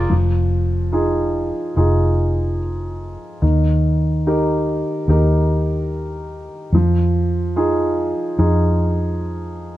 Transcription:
Already playing: upright piano A#3 F4 G#4 A#4 D5
0.10 fingered electric bass F1, upright piano F3
0.92 upright piano D#4 F4 G#4
1.76 fingered electric bass F1, upright piano D#4 F4 G#4
3.42 fingered electric bass D#2, upright piano D#3
4.27 upright piano D#4 G4 A#4
5.08 fingered electric bass D#2, upright piano D#4 G4 A#4
6.72 fingered electric bass F2, upright piano F3
7.56 upright piano D#4 F4 G#4
8.39 fingered electric bass F2, upright piano D#4 F4 G#4

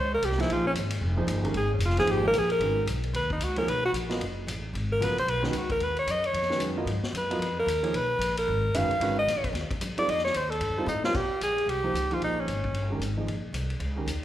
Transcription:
Already playing: upright bass C#2
0.00 alto saxophone C5
0.14 alto saxophone A#4
0.22 upright bass C2, alto saxophone G4, hi-hat pedal, ride
0.32 snare
0.38 grand piano F3 A#3 D#4 G#4 C5, alto saxophone E4, snare, ride
0.49 upright bass A#1, alto saxophone F4, ride
0.67 alto saxophone C#4
0.74 upright bass G#1, hi-hat pedal, ride
0.90 ride
1.01 upright bass F1
1.16 grand piano F3 A#3 D#4 G#4 C5
1.27 upright bass G1, hi-hat pedal, ride
1.43 grand piano D#3 G#3 C#4 G4 A#4, ride
1.54 upright bass G#1, alto saxophone G#4, ride
1.74 alto saxophone C#4
1.79 upright bass F1, hi-hat pedal, ride
1.85 alto saxophone F4
1.90 snare
1.97 grand piano F3 A#3 D#4 G#4 C5, alto saxophone G#4, snare, ride
2.05 upright bass G#1, ride
2.11 alto saxophone G4
2.27 alto saxophone A#4
2.33 upright bass A#1, hi-hat pedal, ride
2.38 alto saxophone G#4
2.50 alto saxophone A#4, ride
2.59 upright bass G#1, grand piano D#3 G#3 C#4 F#4 B4, ride
2.86 upright bass B1, hi-hat pedal, ride
3.03 ride
3.13 upright bass D#2, alto saxophone B4, ride
3.30 alto saxophone D#4, kick
3.39 upright bass C#2, hi-hat pedal, ride
3.44 alto saxophone F#4
3.56 grand piano F3 A#3 D#4 G#4 C#5, alto saxophone A#4, ride
3.67 upright bass B1, alto saxophone B4, ride
3.85 alto saxophone F#4
3.92 upright bass A#1, hi-hat pedal, ride
4.09 grand piano F#3 B3 F4 A#4 D#5, snare, ride
4.20 upright bass F#1, ride
4.47 upright bass A1, hi-hat pedal, ride
4.74 upright bass G#1, ride
4.92 alto saxophone A#4
5.00 upright bass A#1, grand piano C#3 F#3 B3 F4 A#4, alto saxophone B4, hi-hat pedal, ride
5.18 alto saxophone C5, ride
5.26 upright bass B1, alto saxophone B4, ride
5.42 grand piano D#3 G#3 C#4 F#4 B4, alto saxophone D#4, snare
5.53 upright bass C#2, alto saxophone F#4, hi-hat pedal, ride
5.70 alto saxophone A#4, kick, ride
5.80 upright bass D#2, ride
5.84 alto saxophone B4
5.97 alto saxophone C#5, ride
6.07 upright bass F#2, alto saxophone D#5, hi-hat pedal, ride
6.24 alto saxophone C#5, ride
6.33 upright bass F2, ride
6.42 snare
6.49 grand piano D#3 G#3 C#4 F#4 B4, snare
6.60 upright bass F#2, hi-hat pedal, ride
6.77 grand piano F#3 B3 F4 A#4 D#5
6.85 upright bass G#2, ride
7.02 muted upright bass stroke, snare
7.12 upright bass F#2, hi-hat pedal, ride
7.17 alto saxophone B4
7.30 grand piano F#3 B3 F4 A#4 D#5, ride
7.39 upright bass F2, ride
7.59 alto saxophone A#4
7.66 upright bass D#2, hi-hat pedal, ride
7.83 grand piano F3 A#3 D#4 G#4 C#5, ride
7.93 upright bass B1, alto saxophone B4, ride
8.19 upright bass A#1, hi-hat pedal, ride
8.37 alto saxophone A#4, ride
8.48 upright bass G#1
8.74 upright bass F#1, grand piano D#3 G#3 C#4 F#4 B4, alto saxophone F5, hi-hat pedal, ride
8.90 muted upright bass stroke, ride
9.00 upright bass G#1, grand piano D#3 G#3 C#4 F#4 B4, ride
9.19 alto saxophone D#5
9.26 upright bass A#1, snare, hi-hat pedal, ride
9.44 kick, ride
9.53 upright bass D#2, snare, ride
9.70 muted upright bass stroke, kick, ride
9.81 upright bass F#2, hi-hat pedal, ride
9.97 grand piano G3 C4 D#4 F4 A4, alto saxophone D5, muted upright bass stroke, ride
10.08 upright bass F2, alto saxophone D#5, ride
10.18 snare
10.25 alto saxophone C#5, snare
10.34 upright bass D#2, alto saxophone C5, hi-hat pedal, ride
10.51 alto saxophone A4, ride
10.60 upright bass G2, ride
10.70 upright bass F2
10.78 upright bass D#2, grand piano G3 C4 D#4 F4 A4
10.86 upright bass A2, alto saxophone D#4, hi-hat pedal
11.04 grand piano G3 C4 F4 A#4 C#5, alto saxophone F4, snare
11.14 upright bass A#2, alto saxophone G4, kick, crash
11.29 muted upright bass stroke
11.40 upright bass A#1, alto saxophone G#4, hi-hat pedal, ride
11.58 ride
11.66 upright bass C2, alto saxophone G4, ride
11.83 grand piano F3 A#3 D#4 G#4 C5
11.94 upright bass C#2, hi-hat pedal, ride
12.11 grand piano F3 A#3 D#4 G#4 C5, alto saxophone F4, ride
12.20 upright bass A#1, ride
12.24 alto saxophone D#4
12.40 alto saxophone C#4
12.47 upright bass G#1, hi-hat pedal, ride
12.64 kick
12.73 upright bass G1, ride
12.90 grand piano D#3 G#3 C#4 G4 A#4
13.00 upright bass G#1, hi-hat pedal, ride
13.17 grand piano F3 A#3 D#4 G#4 D#5
13.27 upright bass A#1, ride
13.53 upright bass C2, hi-hat pedal, ride
13.70 ride
13.80 upright bass C#2, ride
13.96 grand piano D#3 G#3 C#4 G4 A#4
14.06 upright bass D#2, hi-hat pedal, ride

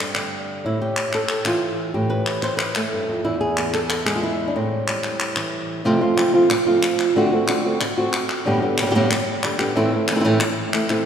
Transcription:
Already playing: nylon-string guitar G2 C4
0.00 nylon-string guitar G3
0.15 nylon-string guitar D3, clap
0.65 nylon-string guitar A2 E4
0.82 nylon-string guitar G4
0.96 clap
1.13 nylon-string guitar A4, clap
1.29 nylon-string guitar G4, clap
1.45 nylon-string guitar E3 F4, clap
1.94 nylon-string guitar A2 G4
2.10 nylon-string guitar B4
2.26 clap
2.42 nylon-string guitar C5, clap
2.57 nylon-string guitar B4, clap
2.75 nylon-string guitar A3 A4, clap
2.93 nylon-string guitar G2
3.09 nylon-string guitar F2
3.25 nylon-string guitar E2 E4
3.41 nylon-string guitar G#4
3.57 nylon-string guitar B3, clap
3.74 nylon-string guitar A4, clap
3.90 clap
4.05 nylon-string guitar G#3 G#4, clap
4.15 nylon-string guitar F4
4.23 nylon-string guitar E4
4.48 nylon-string guitar D4
4.55 nylon-string guitar A2 C4
4.88 nylon-string guitar G3, clap
5.04 clap
5.20 clap
5.36 nylon-string guitar E3, clap
5.84 nylon-string guitar F2 C3 F3 A3 C4 F4
6.01 nylon-string guitar F3 A3 C4 F4
6.17 nylon-string guitar F3 A3 C4 F4, clap
6.34 nylon-string guitar F3 A3 C4 F4
6.50 muted nylon-string guitar stroke, clap
6.66 nylon-string guitar F3 A3 C4 F4
6.83 clap
6.99 clap
7.16 nylon-string guitar D3 A3 C4 F#4
7.32 nylon-string guitar A3 C4 F#4
7.48 nylon-string guitar D3 A3 C4 F#4, clap
7.65 nylon-string guitar A3 C4 F#4
7.81 muted nylon-string guitar stroke, clap
7.97 nylon-string guitar A3 C4 F#4
8.13 clap
8.29 clap
8.46 nylon-string guitar G2 A2 D3 G3 B3 G4
8.62 nylon-string guitar D3 G3 B3 G4
8.78 nylon-string guitar A2 D3, clap
8.82 nylon-string guitar A2 G3 B3 G4
8.86 nylon-string guitar D3 G3 B3 G4
8.91 nylon-string guitar A2 D3 G3 B3 G4
8.95 nylon-string guitar G2 A2 D3 G3 B3 G4
9.11 muted nylon-string guitar stroke, clap
9.43 nylon-string guitar D3 G3 B3 G4, clap
9.59 nylon-string guitar D3 G3 B3 G4, clap
9.75 nylon-string guitar A2 E3 A3 C4 E4
9.92 nylon-string guitar A3 C4 E4
10.08 nylon-string guitar E3 A3 C4, clap
10.12 nylon-string guitar E3 A3 C4 E4
10.16 nylon-string guitar E3 A3 E4
10.21 nylon-string guitar A2 E3 A3 C4 E4
10.25 nylon-string guitar C4 E4
10.40 muted nylon-string guitar stroke, clap
10.73 nylon-string guitar E3 A3 C4 E4, clap
10.90 nylon-string guitar A3 C4 E4, clap

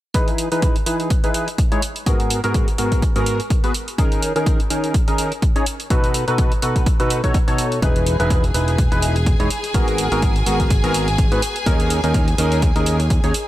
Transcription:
0.14 synth stab E3 D#4 E4 G#4 B4, kick, closed hi-hat
0.28 closed hi-hat
0.38 closed hi-hat
0.52 synth stab E3 D#4 E4 G#4 B4, closed hi-hat
0.62 kick, closed hi-hat
0.76 closed hi-hat
0.86 synth stab E3 D#4 E4 G#4 B4, closed hi-hat
1.00 closed hi-hat
1.10 kick, closed hi-hat
1.24 synth stab E3 D#4 E4 G#4 B4, closed hi-hat
1.34 closed hi-hat
1.48 closed hi-hat
1.58 kick, closed hi-hat
1.72 synth stab G#3 D#4 E4 G#4 C#5, closed hi-hat
1.82 closed hi-hat
1.96 closed hi-hat
2.06 synth stab G#2 B3 F#4 G#4 A#4, kick, closed hi-hat
2.20 closed hi-hat
2.30 closed hi-hat
2.44 synth stab G#2 B3 F#4 G#4 A#4, closed hi-hat
2.54 kick, closed hi-hat
2.68 closed hi-hat
2.78 synth stab G#2 B3 F#4 G#4 A#4, closed hi-hat
2.92 kick, closed hi-hat
3.02 kick, closed hi-hat
3.16 synth stab G#2 B3 F#4 G#4 A#4, closed hi-hat
3.26 closed hi-hat
3.40 closed hi-hat
3.50 kick, closed hi-hat
3.64 synth stab B3 F#4 G#4 B4, closed hi-hat
3.74 closed hi-hat
3.88 closed hi-hat
3.98 synth stab D#3 C#4 D#4 G#4 A#4, kick, closed hi-hat
4.12 closed hi-hat
4.22 closed hi-hat
4.36 synth stab D#3 C#4 D#4 G#4 A#4, closed hi-hat
4.46 kick, closed hi-hat
4.60 closed hi-hat
4.70 synth stab D#3 C#4 D#4 G#4 A#4, closed hi-hat
4.84 closed hi-hat
4.94 kick, closed hi-hat
5.08 synth stab D#3 C#4 D#4 G#4 A#4, closed hi-hat
5.18 closed hi-hat
5.32 closed hi-hat
5.42 kick, closed hi-hat
5.56 synth stab C#4 D#4 G#4 C#5, closed hi-hat
5.66 closed hi-hat
5.80 closed hi-hat
5.90 synth stab B2 D#4 F#4 A4 B4, kick, closed hi-hat
6.04 closed hi-hat
6.14 closed hi-hat
6.28 synth stab B2 D#4 F#4 A4 B4, closed hi-hat
6.38 kick, closed hi-hat
6.52 closed hi-hat
6.62 synth stab B2 D#4 F#4 A4 B4, closed hi-hat
6.76 kick, closed hi-hat
6.86 kick, closed hi-hat
7.00 synth stab B2 D#4 F#4 A4 B4, closed hi-hat
7.10 closed hi-hat
7.24 synth stab B2 D#4 F#4 A4 C#5, kick, closed hi-hat
7.34 kick, closed hi-hat
7.48 synth stab B2 D#4 F#4 A4 C#5, closed hi-hat
7.58 closed hi-hat
7.72 closed hi-hat
7.82 fingered electric bass E1, synth stab E3 D#4 E4 G#4 B4, violin section G#4 G#5, kick, closed hi-hat
7.96 closed hi-hat
8.07 closed hi-hat
8.20 fingered electric bass E1, synth stab E3 D#4 E4 G#4 B4, closed hi-hat
8.30 kick, closed hi-hat
8.44 closed hi-hat
8.54 fingered electric bass E1, synth stab E3 D#4 E4 G#4 B4, closed hi-hat
8.68 closed hi-hat
8.78 kick, closed hi-hat
8.92 fingered electric bass E1, synth stab E3 D#4 E4 G#4 B4, closed hi-hat
9.02 closed hi-hat
9.16 closed hi-hat
9.26 kick, closed hi-hat
9.40 fingered electric bass E1, synth stab G#3 D#4 E4 G#4 C#5, closed hi-hat
9.50 closed hi-hat
9.64 closed hi-hat
9.74 fingered electric bass G#1, synth stab G#2 B3 F#4 G#4 A#4, kick, closed hi-hat
9.88 closed hi-hat
9.98 closed hi-hat
10.12 fingered electric bass G#1, synth stab G#2 B3 F#4 G#4 A#4, closed hi-hat
10.22 kick, closed hi-hat
10.36 closed hi-hat
10.46 fingered electric bass G#1, synth stab G#2 B3 F#4 G#4 A#4, closed hi-hat
10.60 kick, closed hi-hat
10.70 kick, closed hi-hat
10.84 fingered electric bass G#1, synth stab G#2 B3 F#4 G#4 A#4, closed hi-hat
10.94 closed hi-hat
11.08 closed hi-hat
11.18 kick, closed hi-hat
11.32 fingered electric bass G#2, synth stab B3 F#4 G#4 B4, closed hi-hat
11.42 closed hi-hat
11.56 closed hi-hat
11.66 fingered electric bass D#2, synth stab D#3 C#4 D#4 G#4 A#4, kick, closed hi-hat
11.80 closed hi-hat
11.90 closed hi-hat
12.04 fingered electric bass D#2, synth stab D#3 C#4 D#4 G#4 A#4, closed hi-hat
12.14 kick, closed hi-hat
12.28 closed hi-hat
12.38 fingered electric bass D#2, synth stab D#3 C#4 D#4 G#4 A#4, closed hi-hat
12.52 closed hi-hat
12.62 kick, closed hi-hat
12.76 fingered electric bass D#2, synth stab D#3 C#4 D#4 G#4 A#4, closed hi-hat
12.86 closed hi-hat
13.00 closed hi-hat
13.10 kick, closed hi-hat
13.24 fingered electric bass D#2, synth stab C#4 D#4 G#4 C#5, closed hi-hat
13.34 closed hi-hat

